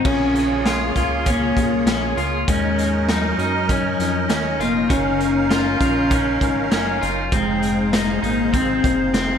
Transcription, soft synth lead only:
0.06 C#4
1.30 A#3
2.49 G#3
3.09 F#3
4.62 A#3
4.90 C#4
5.80 C#4
7.35 G#3
8.26 A#3
8.56 C4

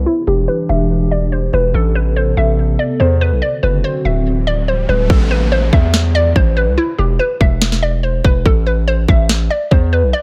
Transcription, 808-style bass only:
0.27 E1
0.69 E1
1.53 E1
1.74 A1
2.37 A1
3.00 E2
3.32 B1
3.63 F#1
4.05 D1
4.89 D1
5.10 A1
5.73 E2
6.36 A1
6.67 C2
6.99 E1
7.41 E1
8.24 E1
8.46 A1
9.08 A1
9.71 E2
10.03 B1

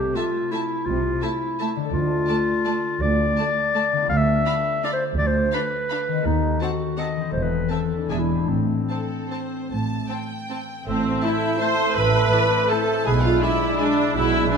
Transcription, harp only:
Already playing: C3 A3 C4 E4 A4 E5
1.76 D3
1.80 A3
1.85 A4
1.89 D5
3.92 D3
3.97 B3
4.01 F4
4.06 B4
6.08 D#3
6.13 C4
6.17 F#4
6.22 A4
7.16 E3
7.21 C4
7.25 E4
7.30 A4
7.92 E3
7.97 D4
8.01 E4
8.06 G#4
8.31 A2
8.35 C4
8.40 E4
8.45 A4
10.87 A2
11.05 C4
11.23 A4
11.42 C5
11.61 A4
11.98 A2
12.15 C4
12.33 A4
12.52 C5
12.89 E4
13.07 B2
13.24 D4
13.43 G#4
13.62 D5
13.81 G#4
13.99 E4
14.16 B2
14.34 D4
14.52 G#4

